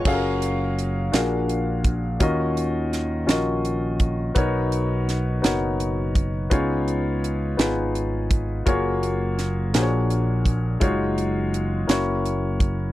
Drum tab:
CC |x-----|------|------|------|
HH |-xxxxx|xxxxxx|xxxxxx|xxxxxx|
SD |---o--|--oo--|--oo--|---o--|
BD |o----o|o----o|o----o|o----o|

CC |------|------|
HH |xxxxxx|xxxxxx|
SD |--oo--|---o--|
BD |o----o|o----o|